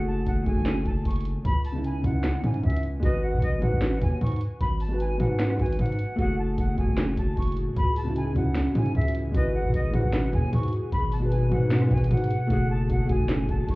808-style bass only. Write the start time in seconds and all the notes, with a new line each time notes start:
Already playing: F#1
0.26 F#1
0.46 F#1
0.57 F#1
0.86 F#1
1.05 F#1
1.36 G#1
1.45 C#2
2.04 C#2
2.44 G#2
2.63 C#2
3.03 G#1
3.33 B2
3.42 G#1
3.62 G#2
3.72 G#1
4.01 D#2
4.21 G#2
4.61 G#1
5.20 G#2
5.59 G#1
5.79 G#2
6.19 F#1
6.58 F#1
6.78 F#1
6.88 F#1
7.17 F#1
7.37 F#1
7.67 G#1
7.76 C#2
8.36 C#2
8.75 G#2
8.95 C#2
9.34 G#1
9.64 B2
9.74 G#1
9.94 G#2
10.04 G#1
10.33 D#2
10.53 G#2
10.92 G#1
11.52 G#2
11.91 G#1
12.11 G#2
12.50 F#1
12.90 F#1
13.09 F#1
13.20 F#1
13.49 F#1
13.69 F#1